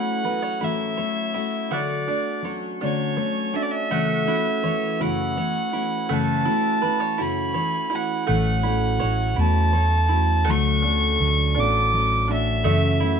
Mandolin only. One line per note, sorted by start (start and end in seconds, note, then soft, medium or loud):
0.00 1.70 A3 medium
0.00 0.59 E4 medium
0.00 1.71 F#5 medium
0.25 0.42 B4 medium
0.42 0.96 C#5 soft
0.61 1.33 E4 soft
0.97 2.11 C#5 soft
1.34 1.78 E4 medium
1.71 3.91 A3 medium
1.71 3.91 F#5 medium
2.08 2.80 D4 medium
2.45 3.16 C#5 medium
2.81 3.53 D4 medium
3.17 4.63 C#5 medium
3.54 3.98 D4 medium
3.91 5.00 A3 medium
3.91 6.09 F#5 medium
4.27 5.01 E4 soft
4.64 5.37 C#5 medium
5.01 5.73 E4 medium
5.37 6.81 C#5 soft
5.73 6.45 E4 soft
6.09 6.45 A3 medium
6.09 8.27 F#5 medium
6.45 7.18 E4 soft
6.82 7.00 B4 medium
7.00 7.53 C#5 soft
7.18 7.88 E4 medium
7.54 8.99 C#5 medium
7.90 8.34 E4 medium
8.27 10.44 A3 medium
8.27 10.45 F#5 medium
8.63 9.35 E4 soft
9.00 9.72 C#5 medium
9.36 10.07 E4 medium
9.73 10.85 C#5 medium
10.09 10.53 E4 medium
10.45 12.64 A3 medium
10.45 12.65 F#5 medium
10.82 11.53 D4 soft
11.55 12.27 D4 medium
12.28 12.72 D4 soft
12.64 13.20 A3 medium
12.64 13.20 E5 medium
13.00 13.20 E4 medium